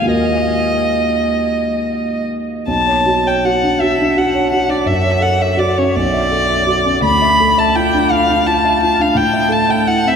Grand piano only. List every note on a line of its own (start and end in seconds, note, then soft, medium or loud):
0.00 2.59 D#2 soft
0.00 0.14 G#2 soft
0.00 0.14 G#3 soft
0.00 2.60 A#3 soft
0.00 0.05 F4 soft
0.00 0.14 G#4 soft
0.00 0.14 B4 soft
0.05 2.61 F4 soft
0.05 2.62 F#4 soft
0.05 2.62 A#4 soft
2.67 4.84 B1 soft
2.87 3.18 C#5 soft
3.06 3.37 F#4 soft
3.25 3.55 C#5 soft
3.45 3.74 F#4 soft
3.63 3.92 D4 soft
3.82 4.10 F#4 soft
3.99 4.27 D4 soft
4.17 4.45 F#4 soft
4.34 4.63 C#5 soft
4.52 4.81 F#4 soft
4.68 4.87 D4 soft
4.86 5.92 F#2 soft
5.04 5.34 C#5 soft
5.21 5.52 A4 soft
5.40 5.70 C#5 soft
5.57 5.88 F#4 soft
5.78 5.96 C#4 soft
5.96 7.01 B1 soft
6.14 6.43 E5 soft
6.31 6.60 A4 soft
6.50 6.79 E5 soft
6.67 6.96 F#4 soft
6.85 7.04 C#4 soft
7.02 9.12 D2 soft
7.22 7.52 E5 soft
7.40 7.70 A4 soft
7.58 7.87 E5 soft
7.76 8.05 F4 soft
7.94 8.23 D4 soft
8.12 8.41 F4 soft
8.30 8.58 D4 soft
8.47 8.76 F4 soft
8.65 8.93 E5 soft
8.82 9.10 F4 soft
8.99 9.17 D4 soft
9.15 10.16 A2 soft
9.33 9.62 E5 soft
9.49 9.79 A4 soft
9.69 9.98 E5 soft
9.87 10.16 E4 soft
10.06 10.16 C4 soft